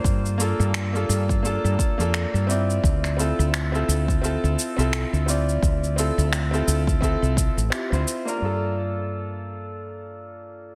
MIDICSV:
0, 0, Header, 1, 4, 480
1, 0, Start_track
1, 0, Tempo, 697674
1, 32, Time_signature, 4, 2, 24, 8
1, 7396, End_track
2, 0, Start_track
2, 0, Title_t, "Grand piano"
2, 0, Program_c, 0, 0
2, 0, Note_on_c, 0, 58, 86
2, 0, Note_on_c, 0, 62, 77
2, 0, Note_on_c, 0, 65, 71
2, 0, Note_on_c, 0, 72, 90
2, 241, Note_off_c, 0, 58, 0
2, 245, Note_off_c, 0, 62, 0
2, 249, Note_off_c, 0, 65, 0
2, 253, Note_off_c, 0, 72, 0
2, 260, Note_on_c, 0, 58, 84
2, 268, Note_on_c, 0, 62, 69
2, 276, Note_on_c, 0, 65, 76
2, 283, Note_on_c, 0, 69, 85
2, 612, Note_off_c, 0, 58, 0
2, 616, Note_off_c, 0, 62, 0
2, 619, Note_off_c, 0, 65, 0
2, 623, Note_off_c, 0, 69, 0
2, 639, Note_on_c, 0, 58, 84
2, 647, Note_on_c, 0, 62, 73
2, 653, Note_on_c, 0, 65, 79
2, 662, Note_on_c, 0, 69, 90
2, 962, Note_off_c, 0, 58, 0
2, 966, Note_off_c, 0, 62, 0
2, 969, Note_off_c, 0, 65, 0
2, 973, Note_off_c, 0, 69, 0
2, 980, Note_on_c, 0, 58, 86
2, 988, Note_on_c, 0, 62, 80
2, 995, Note_on_c, 0, 65, 80
2, 1004, Note_on_c, 0, 69, 100
2, 1332, Note_off_c, 0, 58, 0
2, 1336, Note_off_c, 0, 62, 0
2, 1339, Note_off_c, 0, 65, 0
2, 1344, Note_off_c, 0, 69, 0
2, 1360, Note_on_c, 0, 58, 85
2, 1368, Note_on_c, 0, 62, 79
2, 1376, Note_on_c, 0, 65, 77
2, 1384, Note_on_c, 0, 69, 95
2, 1682, Note_off_c, 0, 58, 0
2, 1686, Note_off_c, 0, 62, 0
2, 1690, Note_off_c, 0, 65, 0
2, 1694, Note_off_c, 0, 69, 0
2, 1699, Note_on_c, 0, 60, 85
2, 1707, Note_on_c, 0, 64, 78
2, 1715, Note_on_c, 0, 65, 73
2, 1723, Note_on_c, 0, 74, 86
2, 2161, Note_off_c, 0, 60, 0
2, 2165, Note_off_c, 0, 64, 0
2, 2169, Note_off_c, 0, 65, 0
2, 2173, Note_off_c, 0, 74, 0
2, 2178, Note_on_c, 0, 60, 81
2, 2186, Note_on_c, 0, 64, 72
2, 2194, Note_on_c, 0, 65, 70
2, 2202, Note_on_c, 0, 69, 84
2, 2531, Note_off_c, 0, 60, 0
2, 2535, Note_off_c, 0, 64, 0
2, 2539, Note_off_c, 0, 65, 0
2, 2543, Note_off_c, 0, 69, 0
2, 2559, Note_on_c, 0, 60, 89
2, 2566, Note_on_c, 0, 64, 75
2, 2574, Note_on_c, 0, 65, 77
2, 2583, Note_on_c, 0, 69, 92
2, 2882, Note_off_c, 0, 60, 0
2, 2885, Note_off_c, 0, 64, 0
2, 2890, Note_off_c, 0, 65, 0
2, 2894, Note_off_c, 0, 69, 0
2, 2900, Note_on_c, 0, 60, 88
2, 2908, Note_on_c, 0, 64, 82
2, 2915, Note_on_c, 0, 65, 78
2, 2923, Note_on_c, 0, 69, 96
2, 3252, Note_off_c, 0, 60, 0
2, 3256, Note_off_c, 0, 64, 0
2, 3259, Note_off_c, 0, 65, 0
2, 3263, Note_off_c, 0, 69, 0
2, 3278, Note_on_c, 0, 60, 87
2, 3286, Note_on_c, 0, 64, 83
2, 3294, Note_on_c, 0, 65, 80
2, 3301, Note_on_c, 0, 69, 96
2, 3602, Note_off_c, 0, 60, 0
2, 3605, Note_off_c, 0, 64, 0
2, 3609, Note_off_c, 0, 65, 0
2, 3613, Note_off_c, 0, 69, 0
2, 3619, Note_on_c, 0, 60, 81
2, 3626, Note_on_c, 0, 64, 74
2, 3634, Note_on_c, 0, 65, 79
2, 3642, Note_on_c, 0, 74, 94
2, 4081, Note_off_c, 0, 60, 0
2, 4085, Note_off_c, 0, 64, 0
2, 4089, Note_off_c, 0, 65, 0
2, 4093, Note_off_c, 0, 74, 0
2, 4101, Note_on_c, 0, 60, 80
2, 4109, Note_on_c, 0, 64, 74
2, 4117, Note_on_c, 0, 65, 74
2, 4124, Note_on_c, 0, 69, 85
2, 4452, Note_off_c, 0, 60, 0
2, 4456, Note_off_c, 0, 64, 0
2, 4460, Note_off_c, 0, 65, 0
2, 4464, Note_off_c, 0, 69, 0
2, 4479, Note_on_c, 0, 60, 84
2, 4486, Note_on_c, 0, 64, 78
2, 4495, Note_on_c, 0, 65, 76
2, 4502, Note_on_c, 0, 69, 95
2, 4802, Note_off_c, 0, 60, 0
2, 4805, Note_off_c, 0, 64, 0
2, 4810, Note_off_c, 0, 65, 0
2, 4813, Note_off_c, 0, 69, 0
2, 4820, Note_on_c, 0, 60, 89
2, 4827, Note_on_c, 0, 64, 83
2, 4835, Note_on_c, 0, 65, 80
2, 4842, Note_on_c, 0, 69, 101
2, 5172, Note_off_c, 0, 60, 0
2, 5175, Note_off_c, 0, 64, 0
2, 5179, Note_off_c, 0, 65, 0
2, 5183, Note_off_c, 0, 69, 0
2, 5298, Note_on_c, 0, 60, 78
2, 5306, Note_on_c, 0, 64, 71
2, 5314, Note_on_c, 0, 65, 70
2, 5322, Note_on_c, 0, 67, 83
2, 5411, Note_off_c, 0, 60, 0
2, 5414, Note_off_c, 0, 64, 0
2, 5418, Note_off_c, 0, 65, 0
2, 5423, Note_off_c, 0, 67, 0
2, 5438, Note_on_c, 0, 60, 73
2, 5446, Note_on_c, 0, 64, 69
2, 5454, Note_on_c, 0, 65, 66
2, 5461, Note_on_c, 0, 72, 79
2, 5651, Note_off_c, 0, 60, 0
2, 5655, Note_off_c, 0, 64, 0
2, 5659, Note_off_c, 0, 65, 0
2, 5663, Note_off_c, 0, 72, 0
2, 5678, Note_on_c, 0, 58, 74
2, 5686, Note_on_c, 0, 62, 68
2, 5693, Note_on_c, 0, 65, 68
2, 5702, Note_on_c, 0, 70, 82
2, 5756, Note_off_c, 0, 58, 0
2, 5766, Note_on_c, 0, 58, 56
2, 5771, Note_off_c, 0, 62, 0
2, 5782, Note_on_c, 0, 62, 60
2, 5786, Note_off_c, 0, 65, 0
2, 5797, Note_on_c, 0, 65, 55
2, 5813, Note_on_c, 0, 69, 69
2, 6013, Note_off_c, 0, 70, 0
2, 7396, Note_off_c, 0, 58, 0
2, 7396, Note_off_c, 0, 62, 0
2, 7396, Note_off_c, 0, 65, 0
2, 7396, Note_off_c, 0, 69, 0
2, 7396, End_track
3, 0, Start_track
3, 0, Title_t, "Fretless electric bass"
3, 0, Program_c, 1, 35
3, 30, Note_on_c, 1, 43, 93
3, 357, Note_off_c, 1, 43, 0
3, 409, Note_on_c, 1, 43, 96
3, 713, Note_off_c, 1, 43, 0
3, 751, Note_on_c, 1, 43, 94
3, 1078, Note_off_c, 1, 43, 0
3, 1130, Note_on_c, 1, 43, 93
3, 1208, Note_off_c, 1, 43, 0
3, 1368, Note_on_c, 1, 41, 76
3, 1543, Note_off_c, 1, 41, 0
3, 1609, Note_on_c, 1, 43, 96
3, 1913, Note_off_c, 1, 43, 0
3, 1951, Note_on_c, 1, 38, 93
3, 2278, Note_off_c, 1, 38, 0
3, 2332, Note_on_c, 1, 38, 96
3, 2634, Note_off_c, 1, 38, 0
3, 2671, Note_on_c, 1, 38, 98
3, 2998, Note_off_c, 1, 38, 0
3, 3052, Note_on_c, 1, 38, 89
3, 3129, Note_off_c, 1, 38, 0
3, 3289, Note_on_c, 1, 36, 78
3, 3464, Note_off_c, 1, 36, 0
3, 3530, Note_on_c, 1, 38, 91
3, 3833, Note_off_c, 1, 38, 0
3, 3870, Note_on_c, 1, 38, 91
3, 4197, Note_off_c, 1, 38, 0
3, 4252, Note_on_c, 1, 38, 102
3, 4554, Note_off_c, 1, 38, 0
3, 4592, Note_on_c, 1, 38, 95
3, 4918, Note_off_c, 1, 38, 0
3, 4969, Note_on_c, 1, 36, 88
3, 5144, Note_off_c, 1, 36, 0
3, 5209, Note_on_c, 1, 33, 85
3, 5287, Note_off_c, 1, 33, 0
3, 5449, Note_on_c, 1, 38, 96
3, 5527, Note_off_c, 1, 38, 0
3, 5792, Note_on_c, 1, 43, 70
3, 7396, Note_off_c, 1, 43, 0
3, 7396, End_track
4, 0, Start_track
4, 0, Title_t, "Drums"
4, 30, Note_on_c, 9, 36, 115
4, 37, Note_on_c, 9, 82, 43
4, 99, Note_off_c, 9, 36, 0
4, 106, Note_off_c, 9, 82, 0
4, 176, Note_on_c, 9, 82, 20
4, 245, Note_off_c, 9, 82, 0
4, 276, Note_on_c, 9, 82, 66
4, 345, Note_off_c, 9, 82, 0
4, 415, Note_on_c, 9, 82, 31
4, 484, Note_off_c, 9, 82, 0
4, 511, Note_on_c, 9, 26, 95
4, 517, Note_on_c, 9, 82, 40
4, 579, Note_off_c, 9, 26, 0
4, 586, Note_off_c, 9, 82, 0
4, 657, Note_on_c, 9, 82, 19
4, 726, Note_off_c, 9, 82, 0
4, 757, Note_on_c, 9, 82, 70
4, 826, Note_off_c, 9, 82, 0
4, 890, Note_on_c, 9, 36, 92
4, 897, Note_on_c, 9, 82, 33
4, 959, Note_off_c, 9, 36, 0
4, 966, Note_off_c, 9, 82, 0
4, 998, Note_on_c, 9, 82, 40
4, 1067, Note_off_c, 9, 82, 0
4, 1137, Note_on_c, 9, 82, 19
4, 1206, Note_off_c, 9, 82, 0
4, 1231, Note_on_c, 9, 36, 98
4, 1238, Note_on_c, 9, 82, 73
4, 1300, Note_off_c, 9, 36, 0
4, 1307, Note_off_c, 9, 82, 0
4, 1377, Note_on_c, 9, 82, 29
4, 1446, Note_off_c, 9, 82, 0
4, 1472, Note_on_c, 9, 26, 86
4, 1478, Note_on_c, 9, 82, 38
4, 1541, Note_off_c, 9, 26, 0
4, 1547, Note_off_c, 9, 82, 0
4, 1619, Note_on_c, 9, 82, 20
4, 1688, Note_off_c, 9, 82, 0
4, 1720, Note_on_c, 9, 82, 67
4, 1789, Note_off_c, 9, 82, 0
4, 1858, Note_on_c, 9, 82, 32
4, 1927, Note_off_c, 9, 82, 0
4, 1951, Note_on_c, 9, 36, 106
4, 1960, Note_on_c, 9, 82, 40
4, 2020, Note_off_c, 9, 36, 0
4, 2029, Note_off_c, 9, 82, 0
4, 2092, Note_on_c, 9, 26, 28
4, 2098, Note_on_c, 9, 82, 20
4, 2161, Note_off_c, 9, 26, 0
4, 2167, Note_off_c, 9, 82, 0
4, 2199, Note_on_c, 9, 82, 65
4, 2268, Note_off_c, 9, 82, 0
4, 2340, Note_on_c, 9, 82, 30
4, 2408, Note_off_c, 9, 82, 0
4, 2434, Note_on_c, 9, 26, 95
4, 2440, Note_on_c, 9, 82, 41
4, 2503, Note_off_c, 9, 26, 0
4, 2509, Note_off_c, 9, 82, 0
4, 2579, Note_on_c, 9, 82, 20
4, 2648, Note_off_c, 9, 82, 0
4, 2680, Note_on_c, 9, 82, 72
4, 2749, Note_off_c, 9, 82, 0
4, 2810, Note_on_c, 9, 36, 88
4, 2820, Note_on_c, 9, 82, 31
4, 2879, Note_off_c, 9, 36, 0
4, 2888, Note_off_c, 9, 82, 0
4, 2919, Note_on_c, 9, 82, 40
4, 2987, Note_off_c, 9, 82, 0
4, 3059, Note_on_c, 9, 82, 20
4, 3127, Note_off_c, 9, 82, 0
4, 3159, Note_on_c, 9, 82, 73
4, 3227, Note_off_c, 9, 82, 0
4, 3297, Note_on_c, 9, 82, 29
4, 3366, Note_off_c, 9, 82, 0
4, 3392, Note_on_c, 9, 26, 95
4, 3398, Note_on_c, 9, 82, 39
4, 3461, Note_off_c, 9, 26, 0
4, 3467, Note_off_c, 9, 82, 0
4, 3537, Note_on_c, 9, 82, 19
4, 3606, Note_off_c, 9, 82, 0
4, 3637, Note_on_c, 9, 82, 73
4, 3706, Note_off_c, 9, 82, 0
4, 3776, Note_on_c, 9, 82, 31
4, 3845, Note_off_c, 9, 82, 0
4, 3871, Note_on_c, 9, 36, 108
4, 3877, Note_on_c, 9, 82, 42
4, 3939, Note_off_c, 9, 36, 0
4, 3945, Note_off_c, 9, 82, 0
4, 4017, Note_on_c, 9, 82, 21
4, 4085, Note_off_c, 9, 82, 0
4, 4118, Note_on_c, 9, 82, 66
4, 4186, Note_off_c, 9, 82, 0
4, 4259, Note_on_c, 9, 82, 31
4, 4327, Note_off_c, 9, 82, 0
4, 4352, Note_on_c, 9, 26, 94
4, 4358, Note_on_c, 9, 82, 41
4, 4421, Note_off_c, 9, 26, 0
4, 4427, Note_off_c, 9, 82, 0
4, 4498, Note_on_c, 9, 82, 19
4, 4567, Note_off_c, 9, 82, 0
4, 4597, Note_on_c, 9, 82, 70
4, 4666, Note_off_c, 9, 82, 0
4, 4729, Note_on_c, 9, 36, 94
4, 4739, Note_on_c, 9, 82, 29
4, 4798, Note_off_c, 9, 36, 0
4, 4807, Note_off_c, 9, 82, 0
4, 4830, Note_on_c, 9, 36, 60
4, 4839, Note_on_c, 9, 82, 41
4, 4899, Note_off_c, 9, 36, 0
4, 4907, Note_off_c, 9, 82, 0
4, 4977, Note_on_c, 9, 82, 19
4, 5046, Note_off_c, 9, 82, 0
4, 5070, Note_on_c, 9, 36, 101
4, 5078, Note_on_c, 9, 82, 76
4, 5139, Note_off_c, 9, 36, 0
4, 5147, Note_off_c, 9, 82, 0
4, 5217, Note_on_c, 9, 82, 31
4, 5285, Note_off_c, 9, 82, 0
4, 5312, Note_on_c, 9, 26, 98
4, 5318, Note_on_c, 9, 82, 42
4, 5381, Note_off_c, 9, 26, 0
4, 5387, Note_off_c, 9, 82, 0
4, 5458, Note_on_c, 9, 82, 19
4, 5526, Note_off_c, 9, 82, 0
4, 5557, Note_on_c, 9, 82, 69
4, 5626, Note_off_c, 9, 82, 0
4, 5697, Note_on_c, 9, 82, 33
4, 5766, Note_off_c, 9, 82, 0
4, 7396, End_track
0, 0, End_of_file